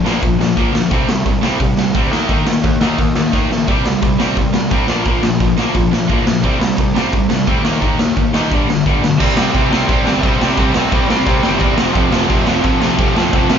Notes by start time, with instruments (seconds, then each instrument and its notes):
0.05 picked electric bass A#1, distorted electric guitar A#2 F3 A#3, snare
0.21 picked electric bass A#1, distorted electric guitar A#2 F3, kick, open hi-hat
0.39 picked electric bass A#1, distorted electric guitar A#2 F3, snare
0.56 picked electric bass A#1, distorted electric guitar A#2 F3 A#3, kick, open hi-hat
0.73 picked electric bass D2, distorted electric guitar A#2 F3, snare
0.90 picked electric bass C2, distorted electric guitar C3 G3 C4, kick, open hi-hat
1.07 picked electric bass C2, distorted electric guitar C3 G3, snare
1.26 picked electric bass C2, distorted electric guitar C3 G3, kick, open hi-hat
1.42 picked electric bass C2, distorted electric guitar C3 G3 C4, snare
1.60 picked electric bass C2, distorted electric guitar C3 G3, kick, open hi-hat
1.77 picked electric bass C2, distorted electric guitar C3 G3, snare
1.94 picked electric bass D2, distorted electric guitar C3 G3 C4, kick, open hi-hat
2.11 picked electric bass D#2, distorted electric guitar D#3 A#3 D#4, snare
2.28 picked electric bass D#2, distorted electric guitar D#3 A#3 D#4, kick, open hi-hat
2.46 picked electric bass D#2, distorted electric guitar D#3 A#3, snare
2.63 picked electric bass D#2, distorted electric guitar D#3 A#3, kick, open hi-hat
2.80 picked electric bass D#2, distorted electric guitar D#3 A#3 D#4, snare
2.97 picked electric bass D#2, distorted electric guitar D#3 A#3, kick, open hi-hat
3.15 picked electric bass D#2, distorted electric guitar D#3 A#3, snare
3.33 picked electric bass D#2, distorted electric guitar D#3 A#3 D#4, kick, snare
3.50 picked electric bass A#1, distorted electric guitar D#3 A#3, snare
3.68 picked electric bass C2, distorted electric guitar C3 G3 C4, kick, open hi-hat
3.84 picked electric bass C2, distorted electric guitar C3 G3, snare
4.02 picked electric bass C2, distorted electric guitar C3 G3, kick, open hi-hat
4.19 picked electric bass C2, distorted electric guitar C3 G3 C4, snare
4.36 picked electric bass C2, distorted electric guitar C3 G3, kick, open hi-hat
4.52 picked electric bass C2, distorted electric guitar C3 G3, snare
4.70 picked electric bass C2, distorted electric guitar C3 G3 C4, kick, open hi-hat
4.88 picked electric bass A#1, distorted electric guitar A#2 F3 A#3, snare
5.05 picked electric bass A#1, distorted electric guitar A#2 F3 A#3, kick, open hi-hat
5.22 picked electric bass A#1, distorted electric guitar A#2 F3, snare
5.40 picked electric bass A#1, distorted electric guitar A#2 F3, kick, open hi-hat
5.56 picked electric bass A#1, distorted electric guitar A#2 F3 A#3, snare
5.74 picked electric bass A#1, distorted electric guitar A#2 F3, kick, open hi-hat
5.91 picked electric bass A#1, distorted electric guitar A#2 F3, snare
6.09 picked electric bass A#1, distorted electric guitar A#2 F3 A#3, kick, open hi-hat
6.24 picked electric bass B1, distorted electric guitar A#2 F3, snare
6.44 picked electric bass C2, distorted electric guitar C3 G3 C4, kick, open hi-hat
6.59 picked electric bass C2, distorted electric guitar C3 G3, snare
6.78 picked electric bass C2, distorted electric guitar C3 G3, kick, open hi-hat
6.95 picked electric bass C2, distorted electric guitar C3 G3 C4, snare
7.13 picked electric bass C2, distorted electric guitar C3 G3, kick, open hi-hat
7.29 picked electric bass C2, distorted electric guitar C3 G3, snare
7.47 picked electric bass D2, distorted electric guitar C3 G3 C4, kick, open hi-hat
7.65 picked electric bass D#2, distorted electric guitar D#3 A#3 D#4, snare
7.81 picked electric bass D#2, distorted electric guitar D#3 A#3 D#4, kick, open hi-hat
7.99 picked electric bass D#2, distorted electric guitar D#3 A#3, snare
8.16 picked electric bass D#2, distorted electric guitar D#3 A#3, kick, open hi-hat
8.33 picked electric bass D#2, distorted electric guitar D#3 A#3 D#4, snare
8.50 picked electric bass G1, distorted electric guitar G2 D3 G3, kick, open hi-hat
8.67 picked electric bass G1, distorted electric guitar G2 D3, snare
8.86 picked electric bass G1, distorted electric guitar G2 D3 G3, kick, open hi-hat
9.02 picked electric bass B1, distorted electric guitar G2 D3, snare
9.19 picked electric bass C2, distorted electric guitar C3 G3 C4, kick, crash
9.35 picked electric bass C2, distorted electric guitar C3 G3, snare
9.39 distorted electric guitar C4
9.54 picked electric bass C2, distorted electric guitar C3 G3 C4, kick, crash
9.70 distorted electric guitar C3 G3 C4, snare
9.87 picked electric bass C3, distorted electric guitar C3 G3, overdriven electric guitar C4, kick, crash
9.91 distorted electric guitar C4
10.05 picked electric bass G1, distorted electric guitar C3 G3 C4, snare
10.23 picked electric bass C2, distorted electric guitar C3 G3 C4, kick, crash
10.39 picked electric bass C2, distorted electric guitar C3 G3 C4, snare
10.57 picked electric bass C2, distorted electric guitar C3 G3 C4, kick, crash
10.74 picked electric bass C2, distorted electric guitar C3 G3 C4, snare
10.91 picked electric bass C2, distorted electric guitar C3 G3 C4, kick, crash
11.08 distorted electric guitar C3 G3 C4, snare
11.26 distorted electric guitar C3 G3 C4, picked electric bass C3, kick, crash
11.43 picked electric bass G1, distorted electric guitar C3 G3 C4, snare
11.60 picked electric bass E2, distorted electric guitar C3 G3 C4, kick, crash
11.77 picked electric bass F1, distorted electric guitar F2 C3 F3, snare
11.95 picked electric bass F1, distorted electric guitar F2 C3 F3, kick, crash
12.12 picked electric bass F1, distorted electric guitar F2 C3 F3, snare
12.29 picked electric bass F1, distorted electric guitar F2 C3 F3, kick, crash
12.45 distorted electric guitar F2 C3 F3, snare
12.62 distorted electric guitar F2 C3 F3, picked electric bass F2, kick, crash
12.80 picked electric bass C2, distorted electric guitar F2 C3 F3, snare
12.97 picked electric bass F1, distorted electric guitar F2 C3 F3, kick, crash
13.14 picked electric bass F1, distorted electric guitar F2 C3 F3, snare
13.32 picked electric bass F1, distorted electric guitar F2 C3 F3, kick, crash
13.49 picked electric bass F1, distorted electric guitar F2 C3 F3, snare